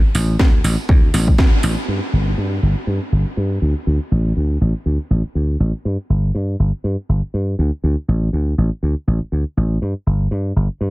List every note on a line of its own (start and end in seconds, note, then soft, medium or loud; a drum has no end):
0.15 0.35 A1 medium
0.15 open hi-hat loud
0.39 0.60 D2 loud
0.39 kick loud
0.39 snare loud
0.64 0.75 A1 medium
0.64 open hi-hat medium
0.89 1.09 D2 medium
0.89 kick loud
1.14 1.34 A1 medium
1.14 snare soft
1.14 open hi-hat loud
1.28 kick medium
1.38 1.50 D2 loud
1.38 kick loud
1.38 snare loud
1.63 1.74 A1 loud
1.63 open hi-hat medium
1.88 1.99 G2 medium
2.13 2.33 G1 medium
2.38 2.58 G2 medium
2.62 2.74 G1 medium
2.87 2.98 G2 medium
3.12 3.23 G1 medium
3.37 3.57 G2 medium
3.62 3.73 D2 medium
3.87 3.98 D2 medium
4.11 4.32 A1 medium
4.37 4.57 D2 medium
4.61 4.72 A1 medium
4.86 4.97 D2 medium
5.10 5.21 A1 medium
5.35 5.55 D2 medium
5.60 5.71 A1 medium
5.85 5.96 G2 medium
6.10 6.30 G1 medium
6.35 6.55 G2 loud
6.59 6.70 G1 medium
6.84 6.95 G2 medium
7.09 7.20 G1 medium
7.34 7.54 G2 medium
7.59 7.70 D2 medium
7.84 7.94 D2 medium
8.08 8.28 A1 medium
8.33 8.53 D2 medium
8.58 8.69 A1 medium
8.83 8.94 D2 medium
9.07 9.18 A1 medium
9.32 9.43 D2 medium
9.57 9.77 A1 medium
9.82 9.93 G2 medium
10.06 10.27 G1 medium
10.31 10.51 G2 medium
10.56 10.67 G1 medium
10.81 10.90 G2 medium